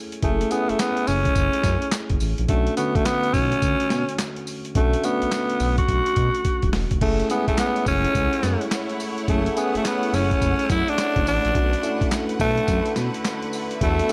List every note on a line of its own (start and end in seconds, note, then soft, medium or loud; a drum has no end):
0.00 0.23 A3 medium
0.00 0.23 C#4 medium
0.00 0.23 E4 medium
0.00 0.24 G#4 medium
0.00 2.51 A4 medium
0.12 closed hi-hat medium
0.23 0.43 F#1 loud
0.23 0.47 A3 medium
0.23 0.53 A3 medium
0.23 0.47 C#4 medium
0.23 0.47 E4 medium
0.23 0.48 G#4 medium
0.23 kick loud
0.23 closed hi-hat medium
0.41 closed hi-hat medium
0.51 1.44 A3 medium
0.51 0.71 B3 medium
0.51 1.45 C#4 medium
0.51 1.45 E4 medium
0.51 1.45 G#4 medium
0.51 closed hi-hat medium
0.51 tambourine medium
0.69 0.74 F#1 soft
0.69 0.81 A3 medium
0.69 closed hi-hat soft
0.79 1.09 B3 loud
0.79 snare loud
0.79 clap medium
0.79 closed hi-hat medium
0.79 tambourine loud
0.97 closed hi-hat medium
1.07 1.28 F#1 medium
1.07 1.92 C#4 loud
1.07 open hi-hat medium
1.07 tambourine medium
1.25 kick loud
1.25 closed hi-hat medium
1.35 1.49 F#1 loud
1.35 kick loud
1.35 closed hi-hat medium
1.35 tambourine medium
1.53 closed hi-hat medium
1.64 1.77 F#2 loud
1.64 kick medium
1.64 snare medium
1.64 closed hi-hat medium
1.64 tambourine medium
1.82 closed hi-hat medium
1.92 snare loud
1.92 clap loud
1.92 closed hi-hat medium
1.92 tambourine loud
2.10 2.18 F#1 loud
2.10 kick loud
2.10 closed hi-hat soft
2.20 2.34 A1 loud
2.20 open hi-hat medium
2.20 tambourine medium
2.38 2.46 A#1 medium
2.38 closed hi-hat medium
2.48 2.69 B1 loud
2.48 2.75 A3 medium
2.48 2.73 A3 medium
2.48 2.73 C#4 medium
2.48 2.74 D4 medium
2.48 2.74 F#4 medium
2.48 kick loud
2.48 closed hi-hat medium
2.67 closed hi-hat medium
2.77 3.71 D3 medium
2.77 3.71 A3 medium
2.77 2.97 B3 loud
2.77 3.71 C#4 medium
2.77 3.72 F#4 medium
2.77 closed hi-hat medium
2.77 tambourine medium
2.95 3.00 B1 medium
2.95 3.07 A3 medium
2.95 kick loud
2.95 closed hi-hat soft
3.05 3.35 B3 loud
3.05 snare loud
3.05 clap medium
3.05 closed hi-hat medium
3.05 tambourine medium
3.24 closed hi-hat soft
3.33 3.54 B1 medium
3.33 4.18 C#4 loud
3.33 kick loud
3.33 open hi-hat medium
3.33 tambourine medium
3.52 closed hi-hat medium
3.62 3.75 D2 medium
3.62 kick loud
3.62 closed hi-hat medium
3.62 tambourine medium
3.80 closed hi-hat medium
3.90 4.04 B2 loud
3.90 snare medium
3.90 closed hi-hat medium
3.90 tambourine medium
4.09 closed hi-hat medium
4.19 snare loud
4.19 clap loud
4.19 closed hi-hat medium
4.19 tambourine loud
4.36 closed hi-hat soft
4.47 open hi-hat medium
4.47 tambourine medium
4.65 closed hi-hat medium
4.75 4.95 B1 loud
4.75 5.00 A3 medium
4.75 5.06 A3 medium
4.75 5.00 C#4 medium
4.75 5.00 D4 medium
4.75 5.00 F#4 medium
4.75 kick loud
4.75 closed hi-hat medium
4.93 closed hi-hat medium
5.03 5.97 A3 medium
5.03 5.78 B3 loud
5.03 5.97 C#4 medium
5.03 5.98 D4 medium
5.03 5.98 F#4 medium
5.03 closed hi-hat medium
5.03 tambourine medium
5.22 5.26 B1 medium
5.22 closed hi-hat soft
5.31 snare loud
5.31 clap loud
5.31 closed hi-hat medium
5.31 tambourine loud
5.50 closed hi-hat medium
5.60 5.80 B1 loud
5.60 open hi-hat medium
5.60 tambourine medium
5.78 6.69 F#4 loud
5.78 kick loud
5.78 closed hi-hat medium
5.88 6.01 B1 loud
5.88 kick medium
5.88 closed hi-hat medium
6.06 closed hi-hat medium
6.16 6.30 B2 loud
6.16 kick medium
6.16 closed hi-hat medium
6.35 closed hi-hat medium
6.45 kick medium
6.45 closed hi-hat medium
6.62 6.70 D#1 loud
6.62 kick medium
6.62 closed hi-hat soft
6.73 6.86 E1 medium
6.73 snare loud
6.73 open hi-hat medium
6.91 6.99 F1 medium
6.91 kick loud
6.91 closed hi-hat medium
7.01 7.22 F#1 loud
7.01 13.77 A3 medium
7.01 7.26 A3 medium
7.01 7.28 A3 medium
7.01 7.26 C#4 medium
7.01 11.50 E4 medium
7.01 7.26 E4 medium
7.01 7.26 G#4 medium
7.01 11.50 C#5 medium
7.01 13.76 F#5 loud
7.01 kick loud
7.01 crash medium
7.20 closed hi-hat medium
7.30 7.38 G#3 medium
7.30 7.47 B3 medium
7.30 8.24 C#4 medium
7.30 8.24 E4 medium
7.30 8.24 G#4 medium
7.30 closed hi-hat medium
7.30 tambourine medium
7.36 8.27 A3 medium
7.48 7.52 F#1 soft
7.48 7.58 A3 medium
7.48 kick medium
7.48 closed hi-hat medium
7.57 7.85 B3 loud
7.57 snare loud
7.57 clap medium
7.57 closed hi-hat medium
7.57 tambourine medium
7.76 closed hi-hat medium
7.86 8.07 F#1 medium
7.86 8.68 C#4 loud
7.86 kick loud
7.86 open hi-hat medium
7.86 tambourine medium
8.05 closed hi-hat medium
8.15 8.28 C#2 loud
8.15 kick loud
8.15 closed hi-hat medium
8.15 tambourine medium
8.33 closed hi-hat medium
8.43 8.56 F#2 loud
8.43 snare medium
8.43 closed hi-hat medium
8.43 tambourine medium
8.61 closed hi-hat medium
8.71 snare loud
8.71 clap loud
8.71 closed hi-hat medium
8.71 tambourine loud
8.90 closed hi-hat soft
9.00 open hi-hat medium
9.00 tambourine medium
9.18 closed hi-hat medium
9.28 9.48 F#1 loud
9.28 9.52 A3 medium
9.28 9.60 A3 medium
9.28 9.53 C#4 medium
9.28 9.53 E4 medium
9.28 9.53 G#4 medium
9.28 kick loud
9.28 closed hi-hat medium
9.46 closed hi-hat medium
9.56 10.50 A3 medium
9.56 9.75 B3 medium
9.56 10.50 C#4 medium
9.56 10.50 E4 medium
9.56 10.51 G#4 medium
9.56 closed hi-hat medium
9.56 tambourine medium
9.75 9.79 F#1 medium
9.75 9.85 A3 medium
9.75 closed hi-hat medium
9.85 10.16 B3 medium
9.85 snare loud
9.85 clap medium
9.85 closed hi-hat medium
9.85 tambourine loud
10.03 closed hi-hat medium
10.13 10.33 F#1 medium
10.13 10.70 C#4 loud
10.13 open hi-hat medium
10.13 tambourine medium
10.31 kick loud
10.31 closed hi-hat medium
10.42 10.54 F#1 medium
10.42 kick loud
10.42 closed hi-hat medium
10.42 tambourine medium
10.59 closed hi-hat medium
10.70 10.83 F#2 loud
10.70 10.91 E4 loud
10.70 kick loud
10.70 snare medium
10.70 closed hi-hat medium
10.70 tambourine medium
10.88 11.27 D4 loud
10.88 closed hi-hat medium
10.98 snare loud
10.98 clap loud
10.98 closed hi-hat medium
10.98 tambourine loud
11.16 11.23 F#1 loud
11.16 kick loud
11.16 closed hi-hat soft
11.27 11.39 A1 loud
11.27 12.08 D4 loud
11.27 open hi-hat medium
11.27 tambourine medium
11.45 11.52 A#1 loud
11.45 closed hi-hat medium
11.54 11.75 B1 loud
11.54 14.13 D3 medium
11.54 11.79 A3 medium
11.54 11.79 C#4 medium
11.54 11.79 D4 medium
11.54 11.79 F#4 medium
11.54 14.13 B4 medium
11.54 kick loud
11.54 closed hi-hat medium
11.73 closed hi-hat medium
11.83 12.77 A3 medium
11.83 12.77 C#4 medium
11.83 12.77 D4 medium
11.83 12.77 E4 medium
11.83 closed hi-hat medium
11.83 tambourine medium
12.01 12.05 B1 soft
12.01 kick loud
12.01 closed hi-hat medium
12.11 snare loud
12.11 clap medium
12.11 closed hi-hat medium
12.11 tambourine medium
12.29 closed hi-hat medium
12.40 12.60 B1 loud
12.40 12.93 A3 loud
12.40 kick loud
12.40 open hi-hat medium
12.40 tambourine medium
12.58 closed hi-hat medium
12.68 12.81 F#2 loud
12.68 kick loud
12.68 closed hi-hat medium
12.68 tambourine medium
12.86 closed hi-hat medium
12.96 13.09 B2 loud
12.96 snare medium
12.96 closed hi-hat medium
12.96 tambourine medium
13.14 closed hi-hat medium
13.25 snare loud
13.25 clap loud
13.25 closed hi-hat medium
13.25 tambourine loud
13.42 closed hi-hat soft
13.53 open hi-hat medium
13.53 tambourine medium
13.71 closed hi-hat medium
13.80 14.01 E2 loud
13.80 14.05 A3 medium
13.80 14.13 A3 loud
13.80 14.06 B3 medium
13.80 14.06 D4 medium
13.80 14.06 F#4 medium
13.80 14.13 A4 medium
13.80 14.13 E5 loud
13.80 kick loud
13.80 closed hi-hat medium
13.99 closed hi-hat medium
14.09 14.13 A3 medium
14.09 14.13 B3 medium
14.09 closed hi-hat medium
14.09 tambourine medium